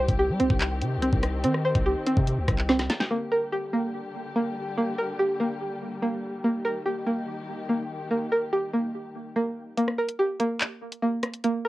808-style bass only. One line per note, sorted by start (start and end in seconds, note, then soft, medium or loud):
0.09 0.31 C2 loud
0.29 0.41 G3 loud
0.40 0.50 C2 loud
0.50 0.83 C2 loud
0.81 0.99 C3 loud
0.97 1.12 C2 loud
1.13 1.45 C2 loud
1.44 1.74 D#3 loud
1.75 1.95 C2 loud
2.17 2.39 C3 loud
2.38 2.48 D2 loud
2.48 2.88 C2 loud